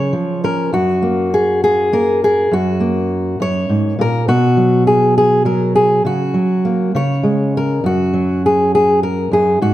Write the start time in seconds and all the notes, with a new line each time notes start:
Already playing: C#3 C#5
0.13 F3
0.44 C#4 A#4
0.73 F#2 F#4
1.02 A#3
1.34 G#4
1.64 G#4
1.93 A#3 A#4
2.24 G#4
2.51 F#2 F#4
2.80 A#3
3.40 F#2 C#5
3.69 G#2
3.99 A#2 A#4
4.28 B2 F#4
4.57 F#3
4.87 G#4
5.18 G#4
5.45 F#3 A#4
5.75 G#4
6.05 C#3 F#4
6.34 F#3
6.65 A#3
6.95 C#3 C#5
7.23 G#3
7.57 A#4
7.84 F#2 F#4
8.13 F#3
8.46 G#4
8.75 G#4
9.03 A#4
9.31 F#2 G#4
9.62 G#2 F#4